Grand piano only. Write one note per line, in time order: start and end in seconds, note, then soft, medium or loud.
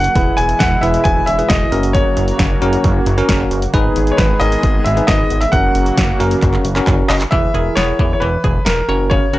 0.00 0.39 F#5 loud
0.37 0.60 G#5 loud
0.59 0.83 F#5 loud
0.81 1.05 E5 medium
1.04 1.28 G#5 loud
1.26 1.48 E5 loud
1.49 1.95 D#5 loud
1.93 3.47 C#5 medium
4.12 4.18 C#5 medium
4.17 4.41 B4 medium
4.40 4.86 D#5 loud
4.84 5.08 E5 medium
5.07 5.42 D#5 loud
5.41 5.52 E5 loud
5.52 6.16 F#5 loud
7.08 7.14 D#5 loud
7.31 7.73 E5 loud
7.75 8.12 C#5 loud
8.13 8.21 C#5 medium
8.20 8.67 B4 medium
8.65 9.12 A#4 medium
9.10 9.39 C#5 medium